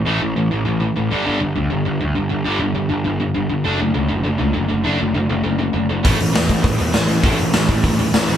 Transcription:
<<
  \new Staff \with { instrumentName = "Distorted electric guitar" } { \clef bass \time 4/4 \key g \lydian \tempo 4 = 200 <a, e a>8 <a, e>8 <a, e>8 <a, e>8 <a, e>8 <a, e>8 <a, e>8 <g, d g>8 | <g, d g>8 <g, d>8 <g, d>8 <g, d>8 <g, d>8 <g, d>8 <g, d>8 <g, d>8 | <g, d g>8 <g, d>8 <g, d>8 <g, d>8 <g, d>8 <g, d>8 <g, d>8 <g, d>8 | <d a d'>8 <d a>8 <d a>8 <d a>8 <d a>8 <d a>8 <d a>8 <d a>8 |
<d a d'>8 <d a>8 <d a>8 <d a>8 <d a>8 <d a>8 <d a>8 <d a>8 | <a, e a>8 <a, e>8 <a, e>8 <a, e>8 <a, e>8 <a, e>8 <a, e>8 <a, e>8 | <a, e a>8 <a, e>8 <a, e>8 <a, e>8 <a, e>8 <a, e>8 <a, e>8 <a, e>8 | }
  \new Staff \with { instrumentName = "Picked electric bass" } { \clef bass \time 4/4 \key g \lydian a,,8 a,,8 a,,8 a,,8 a,,4 a,,8 g,,8 | g,,8 g,,8 d,8 g,,8 g,,8 d,8 g,,8 g,,8 | g,,8 g,,8 g,,8 g,,8 g,,4 g,,8 g,,8 | fis,,8 fis,,8 cis,8 fis,,8 fis,,8 cis,8 fis,,8 fis,,8 |
fis,,8 fis,,8 fis,,8 fis,,8 fis,,4 fis,,8 fis,,8 | a,,8 a,,8 e,8 a,,8 a,,8 e,8 a,,8 a,,8 | a,,8 a,,8 a,,8 a,,8 a,,4 a,,8 a,,8 | }
  \new DrumStaff \with { instrumentName = "Drums" } \drummode { \time 4/4 r4 r4 r4 r4 | r4 r4 r4 r4 | r4 r4 r4 r4 | r4 r4 r4 r4 |
r4 r4 r4 r4 | <hho bd>8 hho8 <hho sn>8 <hho bd>8 <hho bd>8 hho8 <hho sn>8 hho8 | <hho bd>8 hho8 <hho sn>8 <hho bd>8 <hho bd>8 hho8 <hho sn>8 hho8 | }
>>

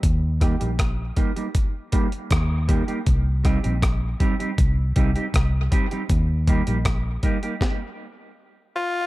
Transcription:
<<
  \new Staff \with { instrumentName = "Tenor saxophone" } { \time 4/4 \key ees \major \tempo 4 = 79 r1 | r1 | r2. r8 f'8 | }
  \new Staff \with { instrumentName = "Clean electric guitar" } { \time 4/4 \key ees \major r8 <g bes ees' g'>16 <g bes ees' g'>16 r8 <g bes ees' g'>16 <g bes ees' g'>16 r8 <g bes ees' g'>16 r8. <g bes ees' g'>16 <g bes ees' g'>16 | r8 <g c' ees' g'>16 <g c' ees' g'>16 r8 <g c' ees' g'>16 <g c' ees' g'>16 r8 <g c' ees' g'>16 <g c' ees' g'>16 r8 <g c' ees' g'>16 <g c' ees' g'>16 | r8 <g bes ees' g'>16 <g bes ees' g'>16 r8 <g bes ees' g'>16 <g bes ees' g'>16 r2 | }
  \new Staff \with { instrumentName = "Fingered electric bass" } { \clef bass \time 4/4 \key ees \major ees,8. bes,,8. r4. ees,8. r16 | c,8. bes,,8. r8 c,8 c,16 r16 c,8 r8 | ees,8. bes,,8. r2 r8 | }
  \new DrumStaff \with { instrumentName = "Drums" } \drummode { \time 4/4 <hh bd>8 <hh bd ss>16 hh16 <hh bd ss>8 <hh bd>16 hh16 <hh bd>8 <hh bd>16 hh16 <hh bd ss>8 <hh bd>16 hh16 | <hh bd>8 <hh bd ss>16 hh16 <hh bd ss>8 <hh bd>16 hh16 <hh bd>8 <hh bd>16 hh16 <hh bd ss>8 <hh bd>16 hh16 | <hh bd>8 <hh bd>16 hh16 <hh bd ss>8 <hh bd>16 hh16 <bd sn>4 r4 | }
>>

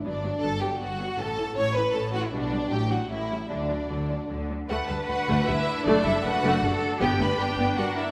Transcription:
<<
  \new Staff \with { instrumentName = "Violin section" } { \time 3/4 \key d \major \tempo 4 = 156 d''4 a''8 g''8 fis''4 | a''4 cis'''8 b''8 a''8 fis''16 e''16 | d''4 g''8 fis''8 e''4 | d''2~ d''8 r8 |
fis''8 a''8 fis''4 e''4 | d''8 e''8 fis''4. r8 | g''8 b''8 g''4 fis''8 e''8 | }
  \new Staff \with { instrumentName = "Violin section" } { \time 3/4 \key d \major d'4 a'8 g'8 fis'4 | a'4 cis''8 b'8 a'8 fis'16 e'16 | d'4 g'8 fis'8 e'4 | d'2~ d'8 r8 |
fis'8 a'8 fis'4 e'4 | d'8 e'8 fis'4. r8 | g'8 b'8 g'4 fis'8 e'8 | }
  \new Staff \with { instrumentName = "Viola section" } { \time 3/4 \key d \major << { b8 b8 b8 b8 b8 b8 | cis'8 cis'8 cis'8 cis'8 cis'8 cis'8 | d'8 d'8 d'8 d'8 cis'8 cis'8 | d'8 d'8 d'8 d'8 d'8 d'8 |
d'2.~ | d'2. | d'2. | } \\ { fis8 fis8 fis8 fis8 fis8 fis8 | e8 e8 e8 e8 e8 e8 | g8 g8 fis8 fis8 g8 g8 | fis8 fis8 fis8 fis8 fis8 fis8 |
a8 g8 a8 a8 g8 r8 | a8 g8 a8 a8 g8 r8 | b8 a8 b8 b8 g8 r8 | } >> }
  \new Staff \with { instrumentName = "Cello section" } { \clef bass \time 3/4 \key d \major g,4 g,4 g,4 | a,4 a,4 a,4 | b,4 a,4 a,4 | d4 d4 d4 |
b'2. | a'4 b'4 a'4 | g'4 b'4 bes'4 | }
  \new Staff \with { instrumentName = "Double bass section" } { \clef bass \time 3/4 \key d \major g,,4 g,,4 g,,4 | a,,4 a,,4 a,,4 | b,,4 a,,4 a,,4 | d,4 d,4 d,4 |
d,8 d,8 d,8 d,8 d,8 r8 | fis,,8 fis,,8 fis,,8 fis,,8 fis,,8 r8 | g,,8 g,,8 g,,8 g,,8 g,,8 r8 | }
>>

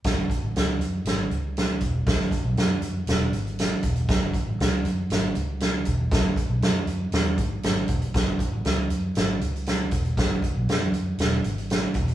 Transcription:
<<
  \new Staff \with { instrumentName = "Fingered electric bass" } { \clef bass \time 4/4 \key e \major \tempo 4 = 118 fis,,8. a,,16 cis,8 fis,8 gis,,8 cis,4 e,,8 | r8. b,,16 fis,8 fis,8 e,,8 gis,,4 e,,8 | fis,,8. a,,16 cis,8 fis,8 gis,,8 cis,4 e,,8 | fis,,8. b,,16 fis,8 fis,8 e,8 gis,8 gis,,8 e,,16 r16 |
fis,,8. a,,16 cis,8 fis,8 gis,,8 cis,4 e,,8 | fis,,8. b,,16 fis,8 fis,8 e,,8 gis,,4 e,,8 | }
  \new DrumStaff \with { instrumentName = "Drums" } \drummode { \time 4/4 <hh bd sn>8 <hh bd>8 <hh sn>8 hh8 <hh sn>8 hh8 <hh sn>8 <hh bd>8 | <hh bd sn>16 sn16 <hh bd>8 <hh sn>8 hh8 <hh sn>8 hh16 hh16 <hh sn>8 <hh bd>16 hh16 | <hh bd sn>8 <hh bd>8 <hh sn>8 hh8 <hh sn>8 hh8 <hh sn>8 <hh bd>8 | <hh bd sn>8 <hh bd>8 <hh sn>8 hh8 <hh sn>8 <hh bd>8 <hh sn>8 <hh bd>16 hh16 |
<hh bd sn>8 <hh bd>8 <hh sn>8 hh8 <hh sn>8 hh16 hh16 <hh sn>8 <hh bd>16 hh16 | <hh bd sn>8 <hh bd>8 <hh sn>8 hh8 <hh sn>8 hh16 hh16 <hh sn>8 <hh bd>16 hh16 | }
>>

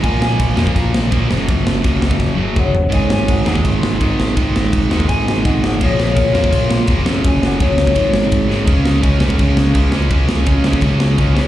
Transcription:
<<
  \new Staff \with { instrumentName = "Harp" } { \time 4/4 \key aes \mixolydian \tempo 4 = 167 << { aes''8 aes''8 bes''8 bes''8 bes''2~ | bes''4 r2 ges''8 ges''8 | aes''8 aes''8 bes''8 bes''8 c'''2~ | c'''4 r4 aes''8 aes''8 ges''8 ges''8 |
des''8 des''8 bes'8 r8 c'''4. bes''8 | aes''8 ges''8 des''4 r2 | \key des \lydian r1 | r1 | } \\ { f''8 f''8 f''8 f''8 r2 | r2. des''8 des''8 | ees''8 ees''8 ges''8 ges''8 r2 | r2 ees''8 ees''8 ees''8 ees''8 |
aes'8 aes'8 f'8 r2 r8 | r4 aes'2. | r1 | r1 | } >> }
  \new Staff \with { instrumentName = "Distorted electric guitar" } { \clef bass \time 4/4 \key aes \mixolydian <bes, f bes>4. <bes, f bes>4. <bes, f bes>8 <ges, des ges>8~ | <ges, des ges>4 <ges, des ges>4. <ges, des ges>4 r8 | <aes, ees aes>4. <aes, ees aes>4. <aes, ees aes>4 | <aes, ees aes>4. <aes, ees aes>4. <aes, ees aes>4 |
<bes, f bes>4. <bes, f bes>4. <bes, f bes>8 <ges, des ges>8~ | <ges, des ges>4 <ges, des ges>4 <aes, ees aes>4. <aes, ees aes>8 | \key des \lydian <des aes des'>4 <des aes des'>8 <des aes des'>8 <des aes des'>4 <des aes des'>8 <des aes des'>8 | <des aes des'>4 <des aes des'>8 <des aes des'>8 <des aes des'>4 <des aes des'>8 <des aes des'>8 | }
  \new Staff \with { instrumentName = "Picked electric bass" } { \clef bass \time 4/4 \key aes \mixolydian bes,,8 bes,,8 bes,,8 f,8 bes,,8 bes,,8 bes,,8 ges,,8 | ges,,8 ges,,8 ges,,8 des,8 ges,,8 ges,,8 ges,,8 ges,,8 | aes,,8 aes,,8 aes,,8 ees,8 aes,,8 aes,,8 aes,,8 aes,,8 | aes,,8 aes,,8 aes,,8 ees,8 aes,,8 aes,,8 aes,,8 aes,,8 |
bes,,8 bes,,8 bes,,8 f,8 bes,,8 bes,,8 f,,8 ges,,8 | ges,,8 ges,,8 ges,,8 des,8 aes,,8 aes,,8 aes,,8 aes,,8 | \key des \lydian des,4 des,8 des,8 des,8 des,8 des,8 des,8 | des,8 des,8 des,8 des,8 des,4 des,8 des,8 | }
  \new DrumStaff \with { instrumentName = "Drums" } \drummode { \time 4/4 <cymc bd>8 sn8 <cymc bd>8 sn16 bd16 <cymc bd>8 sn8 <cymc bd>8 sn8 | <cymc bd>8 sn8 <cymc bd>8 sn16 bd16 <bd sn>4 <bd toml>8 tomfh8 | <cymc bd>8 sn8 <cymc bd>8 sn16 bd16 <cymc bd>8 sn8 <cymc bd>8 sn8 | <cymc bd>8 sn8 <cymc bd>8 sn16 bd16 <cymc bd>8 sn8 <cymc bd>8 sn8 |
<cymc bd>8 sn8 <cymc bd>8 sn16 bd16 <cymc bd>8 sn8 <cymc bd>8 sn8 | <cymc bd>8 sn8 <cymc bd>8 sn16 bd16 <cymc bd>8 sn8 <cymc bd>8 sn8 | <cymc bd>8 sn8 <cymc bd>8 sn16 bd16 <cymc bd>8 sn8 <cymc bd>8 sn8 | <cymc bd>8 sn8 <cymc bd>8 sn16 bd16 <cymc bd>8 sn8 <cymc bd>8 sn8 | }
>>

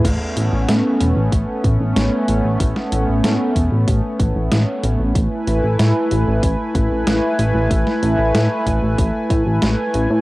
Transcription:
<<
  \new Staff \with { instrumentName = "Analog synth pad" } { \time 4/4 \key a \major \tempo 4 = 94 <a b cis'>1~ | <a b cis'>1 | <a e' b' gis''>1~ | <a e' b' gis''>1 | }
  \new Staff \with { instrumentName = "Analog synth bass" } { \clef bass \time 4/4 \key a \major a,,16 r16 a,,16 a,,16 a,16 r16 e,,16 a,,16 a,,16 r16 a,,16 a,,16 a,,16 r16 a,,16 a,,16 | a,,16 r16 a,,16 a,,16 a,16 r16 e,,16 a,,16 a,,16 r16 a,,16 a,,16 a,,16 r16 a,,16 a,,16 | a,,16 r16 a,,16 a,,16 a,16 r16 a,,16 a,,16 a,,16 r16 a,,16 a,,16 a,,16 r16 a,,16 a,,16 | a,,16 r16 a,,16 a,,16 a,16 r16 a,,16 a,,16 a,,16 r16 a,16 a,,16 a,,16 r16 a,,16 a,16 | }
  \new DrumStaff \with { instrumentName = "Drums" } \drummode { \time 4/4 <cymc hh bd>8 hh8 <hh sn>8 hh8 <hh bd>8 <hh bd>8 <hh sn>8 hh8 | <hh bd>16 sn16 hh8 <hh sn>8 <hh bd>8 <hh bd>8 <hh bd>8 <hh sn>8 hh8 | <hh bd>8 hh8 <hh sn>8 hh8 <hh bd>8 <hh bd>8 <hh sn>8 hh8 | <hh bd>16 sn16 hh8 <hh sn>8 <hh bd>8 <hh bd>8 <hh bd>8 <hh sn>8 hh8 | }
>>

